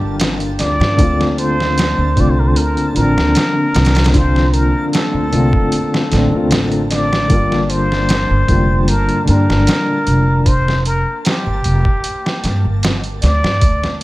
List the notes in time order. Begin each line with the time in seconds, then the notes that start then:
Already playing: D3 G3 A#3 F4 G4 A5
0.01 G1
0.20 snare, closed hi-hat
0.40 closed hi-hat
0.59 D2 D5, snare, closed hi-hat
0.80 G2, snare
0.96 D2 D3 A3 C4, kick, closed hi-hat
1.02 F4
1.21 snare
1.38 C5, closed hi-hat
1.60 snare
1.78 snare, closed hi-hat
1.98 D2
2.16 C2 D3 A3 C4 F4, kick, closed hi-hat
2.21 D5
2.30 C5
2.40 A#4
2.48 C5
2.56 D2 A#4, closed hi-hat
2.77 closed hi-hat
2.93 A1 D3 F3 A#4, closed hi-hat
2.97 C4 D4
3.17 D2, snare
3.35 snare, closed hi-hat
3.74 C2, snare, closed hi-hat
3.85 snare, closed hi-hat
3.95 snare, closed hi-hat
4.04 snare, closed hi-hat
4.12 D3 F3 C4 C5, kick, closed hi-hat
4.17 F4
4.36 snare
4.54 A#4, closed hi-hat
4.93 A4, snare, closed hi-hat
5.14 D2
5.31 C2 D3 A3 C4 F4, closed hi-hat
5.53 kick
5.72 closed hi-hat
5.94 snare
6.11 A1 D3 A3 C4 D4, snare, closed hi-hat
6.30 D2 D3 A3 C4
6.36 F4
6.51 A1, snare, closed hi-hat
6.72 closed hi-hat
6.91 D5, snare, closed hi-hat
7.13 snare
7.28 G1 D3 G3 A#3, kick, closed hi-hat
7.33 F4
7.52 snare
7.70 C5, closed hi-hat
7.92 snare
8.09 snare, closed hi-hat
8.30 G1
8.47 F1 D3 G3 A#3 F4, kick, closed hi-hat
8.88 G1 A#4, closed hi-hat
9.09 closed hi-hat
9.24 G2 D3 G3, closed hi-hat
9.28 A#3 D4 A#4
9.49 G1, snare
9.67 snare, closed hi-hat
10.07 F1, closed hi-hat
10.46 C5, kick, closed hi-hat
10.68 snare
10.85 A#4, closed hi-hat
11.25 G4, snare, closed hi-hat
11.46 G1
11.64 F1, closed hi-hat
11.85 kick
12.04 closed hi-hat
12.26 snare
12.44 G2, snare, closed hi-hat
12.65 G1
12.83 snare, closed hi-hat
13.04 closed hi-hat
13.22 D2 D5, snare, closed hi-hat
13.43 G2, snare
13.61 D2, kick, closed hi-hat
13.84 snare